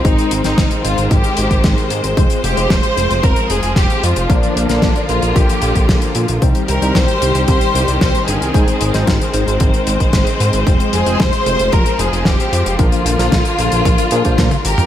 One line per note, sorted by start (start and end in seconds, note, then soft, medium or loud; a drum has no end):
0.00 2.13 C4 medium
0.05 0.15 G#1 loud
0.05 2.15 D#3 medium
0.05 4.26 G#3 medium
0.05 0.42 G#3 medium
0.05 0.42 C4 medium
0.05 0.42 D#4 loud
0.05 0.42 D#4 medium
0.05 4.26 C5 medium
0.05 0.42 C5 medium
0.05 kick loud
0.05 closed hi-hat medium
0.18 closed hi-hat medium
0.31 0.42 G#1 medium
0.31 closed hi-hat loud
0.44 0.55 G#1 medium
0.44 0.60 G#3 medium
0.44 0.60 C4 medium
0.44 0.60 D#4 medium
0.44 0.82 D#4 medium
0.44 0.60 C5 medium
0.44 snare soft
0.44 closed hi-hat medium
0.58 0.69 G#1 loud
0.58 kick loud
0.58 snare loud
0.58 closed hi-hat medium
0.71 closed hi-hat medium
0.84 0.95 G#1 medium
0.84 2.14 G#3 medium
0.84 2.14 C4 medium
0.84 2.14 D#4 medium
0.84 1.09 F4 medium
0.84 2.14 C5 medium
0.84 closed hi-hat medium
0.98 1.09 G#1 medium
0.98 closed hi-hat soft
1.11 1.22 G#1 loud
1.11 1.87 G4 medium
1.11 kick loud
1.11 closed hi-hat medium
1.24 closed hi-hat medium
1.37 1.48 G#1 medium
1.37 closed hi-hat loud
1.51 1.61 G#1 medium
1.51 kick medium
1.51 closed hi-hat soft
1.64 1.75 G#1 loud
1.64 kick loud
1.64 snare loud
1.64 closed hi-hat medium
1.78 closed hi-hat medium
1.90 2.01 G#2 medium
1.90 closed hi-hat loud
2.04 2.15 G#1 medium
2.04 closed hi-hat medium
2.17 2.28 F1 loud
2.17 6.38 F3 medium
2.17 2.54 G#3 medium
2.17 2.54 C4 medium
2.17 4.27 C4 medium
2.17 2.54 F4 medium
2.17 2.54 C5 medium
2.17 kick loud
2.17 closed hi-hat medium
2.30 closed hi-hat medium
2.44 2.54 F1 medium
2.44 2.69 G4 loud
2.44 closed hi-hat medium
2.57 2.68 F1 medium
2.57 2.73 G#3 medium
2.57 2.73 C4 medium
2.57 2.73 F4 medium
2.57 2.73 C5 loud
2.57 closed hi-hat soft
2.70 2.81 F1 loud
2.70 3.24 C5 loud
2.70 kick loud
2.70 snare loud
2.70 closed hi-hat medium
2.83 closed hi-hat medium
2.97 3.07 F1 medium
2.97 4.26 G#3 medium
2.97 4.26 C4 medium
2.97 4.26 F4 medium
2.97 4.27 C5 medium
2.97 closed hi-hat medium
3.10 3.21 F1 medium
3.10 closed hi-hat medium
3.23 3.34 F1 loud
3.23 3.50 A#4 loud
3.23 kick loud
3.23 closed hi-hat medium
3.36 closed hi-hat medium
3.50 3.61 F1 loud
3.50 3.77 G#4 loud
3.50 closed hi-hat loud
3.63 3.74 F1 medium
3.63 closed hi-hat medium
3.76 3.87 F1 loud
3.76 4.02 G4 loud
3.76 kick loud
3.76 snare loud
3.76 closed hi-hat medium
3.90 closed hi-hat medium
4.03 4.14 F2 medium
4.03 4.30 F4 medium
4.03 closed hi-hat loud
4.16 4.27 F1 medium
4.16 closed hi-hat medium
4.30 4.40 A#1 loud
4.30 6.40 D3 medium
4.30 4.66 F3 medium
4.30 4.66 A#3 medium
4.30 6.40 A#3 medium
4.30 4.66 D4 medium
4.30 4.69 D4 loud
4.30 6.40 F4 medium
4.30 4.66 A#4 medium
4.30 kick loud
4.30 closed hi-hat medium
4.43 closed hi-hat medium
4.56 4.67 A#1 medium
4.56 closed hi-hat loud
4.69 4.80 A#1 medium
4.69 4.85 F3 medium
4.69 4.85 A#3 medium
4.69 4.85 D4 medium
4.69 5.07 D4 loud
4.69 4.85 A#4 loud
4.69 snare soft
4.69 closed hi-hat medium
4.82 4.93 A#1 loud
4.82 kick loud
4.82 snare loud
4.82 closed hi-hat medium
4.96 closed hi-hat medium
5.09 5.20 A#1 medium
5.09 6.39 F3 medium
5.09 6.39 A#3 medium
5.09 6.39 D4 medium
5.09 5.34 F4 medium
5.09 6.39 A#4 medium
5.09 closed hi-hat medium
5.22 5.33 A#1 medium
5.22 closed hi-hat medium
5.36 5.46 A#1 loud
5.36 6.16 G4 medium
5.36 kick loud
5.36 closed hi-hat medium
5.49 closed hi-hat medium
5.62 5.73 A#1 medium
5.62 closed hi-hat medium
5.75 5.86 A#1 medium
5.75 kick medium
5.75 closed hi-hat medium
5.89 6.00 A#1 loud
5.89 kick loud
5.89 snare loud
5.89 closed hi-hat medium
6.02 closed hi-hat medium
6.15 6.26 A#2 medium
6.15 closed hi-hat medium
6.28 6.39 A#1 medium
6.28 closed hi-hat medium
6.42 6.53 C2 loud
6.42 10.63 D#3 medium
6.42 6.79 G3 medium
6.42 8.53 G3 medium
6.42 6.79 C4 medium
6.42 12.76 C4 medium
6.42 6.79 D#4 medium
6.42 8.53 G4 medium
6.42 6.79 C5 medium
6.42 kick loud
6.42 closed hi-hat medium
6.55 closed hi-hat medium
6.68 6.79 C2 medium
6.68 6.93 A#4 loud
6.68 closed hi-hat medium
6.82 6.93 C2 medium
6.82 6.97 G3 medium
6.82 6.97 C4 medium
6.82 6.97 D#4 medium
6.82 6.97 C5 loud
6.82 closed hi-hat soft
6.95 7.06 C2 loud
6.95 7.47 C5 loud
6.95 kick loud
6.95 snare loud
6.95 closed hi-hat medium
7.08 closed hi-hat medium
7.22 7.32 C2 medium
7.22 8.51 G3 medium
7.22 8.51 C4 medium
7.22 8.51 D#4 medium
7.22 8.51 C5 medium
7.22 closed hi-hat medium
7.35 7.46 C2 medium
7.35 closed hi-hat soft
7.48 7.59 C2 loud
7.48 7.97 C5 loud
7.48 kick loud
7.48 closed hi-hat medium
7.61 closed hi-hat medium
7.75 7.85 C2 loud
7.75 closed hi-hat loud
7.88 7.99 C2 medium
7.88 closed hi-hat medium
8.01 8.12 C2 medium
8.01 8.26 C5 loud
8.01 kick loud
8.01 snare loud
8.01 closed hi-hat medium
8.15 closed hi-hat medium
8.28 8.38 G1 medium
8.28 9.34 G#4 medium
8.28 closed hi-hat loud
8.41 8.52 C2 medium
8.41 closed hi-hat soft
8.54 8.65 G#1 loud
8.54 8.91 G#3 medium
8.54 12.75 G#3 medium
8.54 8.91 C4 medium
8.54 8.91 D#4 medium
8.54 8.91 C5 medium
8.54 12.75 C5 medium
8.54 kick loud
8.54 closed hi-hat medium
8.68 closed hi-hat soft
8.81 8.92 G#1 medium
8.81 closed hi-hat medium
8.94 9.05 G#1 medium
8.94 9.10 G#3 medium
8.94 9.10 C4 medium
8.94 9.10 D#4 medium
8.94 9.10 C5 loud
8.94 snare soft
8.94 closed hi-hat medium
9.07 9.18 G#1 loud
9.07 kick loud
9.07 snare loud
9.07 closed hi-hat medium
9.21 closed hi-hat medium
9.34 9.45 G#1 medium
9.34 10.64 G#3 medium
9.34 10.64 C4 medium
9.34 10.64 D#4 medium
9.34 10.64 C5 medium
9.34 closed hi-hat medium
9.47 9.58 G#1 medium
9.47 closed hi-hat medium
9.60 9.71 G#1 loud
9.60 kick loud
9.60 closed hi-hat medium
9.74 closed hi-hat medium
9.87 9.98 G#1 loud
9.87 closed hi-hat medium
10.00 10.11 G#1 medium
10.00 kick medium
10.00 closed hi-hat soft
10.13 10.24 G#1 medium
10.13 kick loud
10.13 snare loud
10.13 closed hi-hat medium
10.27 closed hi-hat medium
10.40 10.51 G#2 medium
10.40 closed hi-hat medium
10.53 10.64 G#1 medium
10.53 closed hi-hat medium
10.67 10.77 F1 loud
10.67 14.86 F3 medium
10.67 11.03 G#3 medium
10.67 11.03 C4 medium
10.67 11.03 F4 medium
10.67 11.03 C5 medium
10.67 kick loud
10.67 closed hi-hat medium
10.80 closed hi-hat medium
10.93 11.04 F1 medium
10.93 11.18 G#4 loud
10.93 closed hi-hat loud
11.06 11.17 F1 medium
11.06 11.22 G#3 medium
11.06 11.22 C4 medium
11.06 11.22 F4 medium
11.06 11.22 C5 loud
11.06 closed hi-hat medium
11.20 11.30 F1 loud
11.20 11.73 C5 loud
11.20 kick loud
11.20 snare loud
11.20 closed hi-hat medium
11.33 closed hi-hat medium
11.46 11.57 F1 medium
11.46 12.76 G#3 medium
11.46 12.76 C4 medium
11.46 12.76 F4 medium
11.46 12.76 C5 medium
11.46 closed hi-hat medium
11.59 11.70 F1 medium
11.59 closed hi-hat medium
11.72 11.84 F1 loud
11.72 11.99 A#4 loud
11.72 kick loud
11.72 closed hi-hat medium
11.86 closed hi-hat medium
11.99 12.10 F1 loud
11.99 12.26 G#4 medium
11.99 closed hi-hat medium
12.13 12.23 F1 medium
12.13 closed hi-hat soft
12.25 12.37 F1 loud
12.25 12.79 G4 loud
12.25 kick loud
12.25 snare loud
12.25 closed hi-hat medium
12.40 closed hi-hat medium
12.52 12.63 F2 medium
12.52 closed hi-hat loud
12.66 12.77 F1 medium
12.66 closed hi-hat medium
12.79 12.90 A#1 loud
12.79 14.86 D3 medium
12.79 13.16 F3 medium
12.79 13.16 A#3 medium
12.79 14.86 A#3 medium
12.79 13.16 D4 medium
12.79 14.65 F4 loud
12.79 14.86 F4 medium
12.79 13.16 A#4 medium
12.79 kick loud
12.79 closed hi-hat medium
12.92 closed hi-hat medium
13.06 13.16 A#1 medium
13.06 closed hi-hat loud
13.19 13.30 A#1 medium
13.19 13.35 F3 medium
13.19 13.35 A#3 medium
13.19 13.35 D4 medium
13.19 13.35 A#4 loud
13.19 snare soft
13.19 closed hi-hat medium
13.32 13.43 A#1 loud
13.32 kick loud
13.32 snare loud
13.32 closed hi-hat medium
13.45 closed hi-hat medium
13.59 13.69 A#1 medium
13.59 14.09 F3 medium
13.59 14.09 A#3 medium
13.59 14.09 D4 medium
13.59 14.09 A#4 medium
13.59 closed hi-hat medium
13.72 13.83 A#1 medium
13.72 closed hi-hat medium
13.85 13.96 A#1 loud
13.85 kick loud
13.85 closed hi-hat medium
13.98 closed hi-hat medium
14.11 14.23 A#2 loud
14.11 14.22 F3 loud
14.11 14.22 A#3 medium
14.11 14.22 D4 medium
14.11 14.22 G#4 loud
14.11 closed hi-hat loud
14.25 14.36 A#1 medium
14.25 14.50 F3 medium
14.25 14.50 A#3 medium
14.25 14.50 D4 medium
14.25 14.50 C5 loud
14.25 kick medium
14.25 closed hi-hat medium
14.38 14.49 A#2 loud
14.38 kick loud
14.38 snare loud
14.38 closed hi-hat medium
14.38 high tom medium
14.51 closed hi-hat medium
14.51 high tom medium
14.65 14.76 G#1 medium
14.65 14.86 G4 medium
14.65 14.86 A#4 loud
14.65 closed hi-hat loud
14.78 14.86 F2 medium
14.78 closed hi-hat medium
14.78 mid tom medium